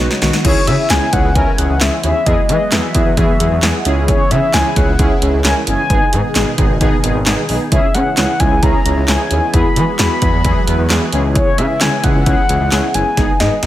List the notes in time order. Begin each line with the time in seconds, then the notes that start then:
Already playing: C#3 F#3 B3 D#4 F#4 C#5
0.00 B3 D#4 F#4
0.11 snare
0.22 B1 D#3 B3 D#4 F#4, snare, open hi-hat
0.33 snare
0.45 C#2 C#3 E3 G#3 B3 C#4 E4 G#4 C#5, kick, closed hi-hat, crash
0.67 C#3 C#4 E4 G#4 E5, closed hi-hat
0.90 C#2 C#4 E4 G#4 G#5, snare, clap, closed hi-hat
1.13 C#2 C#4 E4 G#4 F#5, kick, closed hi-hat
1.24 C#2
1.35 C#2 C#4 E4 A#4 G#5, kick, closed hi-hat
1.58 C#2 C#4 E4 G#4 F#5, closed hi-hat
1.70 C#2
1.81 C#2 C#4 E4 G#4 E5, snare, clap, closed hi-hat
2.04 D#2 C#4 E4 G#4 E5, closed hi-hat
2.26 E2 F#3 B3 E4 F#4 G#4 D#5, kick, closed hi-hat
2.49 E3 B3 E4 G#4 D#5, closed hi-hat
2.72 E2 B3 E4 G#4 E5, snare, clap, closed hi-hat
2.95 E2 B3 E4 G#4, kick, closed hi-hat
3.06 E2
3.17 E2 B3 E4 G#4 E5, kick, closed hi-hat
3.40 E2 B3 E4 G#4, closed hi-hat
3.51 E2
3.63 E2 B3 E4 G#4, snare, clap, closed hi-hat
3.85 C#2 C#3 C#4 E4 G#4, closed hi-hat
4.08 C#5, kick, closed hi-hat
4.31 C#3 C#4 E4 G#4 E5, closed hi-hat
4.54 C#2 C#4 E4 G#4 G#5, snare, clap, closed hi-hat
4.76 C#2 C#4 E4 G#4 F#5, kick, closed hi-hat
4.88 C#2
4.99 C#2 C#4 E4 G#4, kick, closed hi-hat
5.22 C#2 C#4 E4 G#4, closed hi-hat
5.33 C#2
5.45 C#2 C#4 E4 A#4 G#5, snare, clap, closed hi-hat
5.67 F#1 C#4 E4 G#4 G#5, closed hi-hat
5.90 G#1 B2 D#3 B3 D#4 G#4, kick, closed hi-hat
6.13 G#2 B3 D#4 G#4, closed hi-hat
6.35 G#1 B3 D#4 G#4, snare, clap, closed hi-hat
6.58 G#1 B3 D#4 G#4, kick, closed hi-hat
6.70 G#1
6.81 G#1 B3 D#4 G#4, kick, closed hi-hat
7.04 G#1 B3 D#4 G#4, closed hi-hat
7.15 G#1
7.26 G#1 B3 D#4 G#4, snare, clap, closed hi-hat
7.49 B1 B3 D#4 G#4, open hi-hat
7.72 C#2 C#3 E3 G#3 B3 C#4 E4 G#4 E5, kick, closed hi-hat
7.94 C#3 C#4 E4 G#4 F#5, closed hi-hat
8.17 C#2 C#4 E4 G#4 F#5, snare, clap, closed hi-hat
8.40 C#2 C#4 E4 G#4 G#5, kick, closed hi-hat
8.51 C#2
8.63 C#2 C#4 E4 G#4 A#5, kick, closed hi-hat
8.85 C#2 C#4 E4 G#4, closed hi-hat
8.97 C#2
9.08 C#2 C#4 E4 G#4 G#5, snare, clap, closed hi-hat
9.31 D#2 C#4 E4 G#4, closed hi-hat
9.54 E2 F#3 B3 E4 F#4 G#4 B5, kick, closed hi-hat
9.76 E3 B3 E4 G#4, closed hi-hat
9.99 E2 B3 E4 G#4 B5, snare, clap, closed hi-hat
10.22 E2 B3 E4 G#4, kick, closed hi-hat
10.33 E2
10.45 E2 B3 E4 G#4, kick, closed hi-hat
10.67 E2 B3 E4 B4, closed hi-hat
10.79 E2
10.90 E2 B3 E4 G#4, snare, clap, closed hi-hat
11.13 C#2 C#3 G#3 C#4 E4 G#4, closed hi-hat
11.35 C#5, kick, closed hi-hat
11.58 C#3 C#4 E4 G#4 E5, closed hi-hat
11.81 C#2 C#4 E4 G#4 G#5, snare, clap, closed hi-hat
12.04 C#2 C#4 E4 G#4 F#5, kick, closed hi-hat
12.15 C#2
12.26 C#2 C#4 E4 G#4, kick, closed hi-hat
12.49 C#2 C#4 E4 G#4, closed hi-hat
12.60 C#2
12.72 C#2 C#4 E4 G#4, snare, clap, closed hi-hat
12.94 F#1 C#4 E4 G#4 G#5, closed hi-hat
13.17 G#1 B2 D#3 B3 D#4 G#4, kick, snare, closed hi-hat
13.40 G#2 B3 D#4 G#4 D#5, snare, closed hi-hat
13.63 G#1 B3 D#4 A#4 D#5, snare, closed hi-hat